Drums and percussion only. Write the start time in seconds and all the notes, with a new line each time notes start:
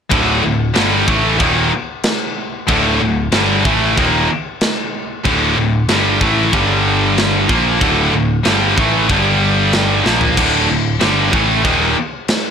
0.11 kick, china
0.75 snare, china
1.08 kick
1.40 kick, china
2.03 snare, china
2.68 kick, china
3.32 snare, china
3.65 kick
3.98 kick, china
4.61 snare, china
5.25 kick, china
5.88 snare, china
6.21 kick
6.53 kick, china
7.18 snare, china
7.49 kick
7.81 kick, china
8.45 snare, china
8.78 kick
9.10 kick, china
9.73 snare, china
10.06 snare
10.21 floor tom
10.37 kick, china, crash
11.01 snare, china
11.33 kick
11.65 kick, china
12.28 snare, china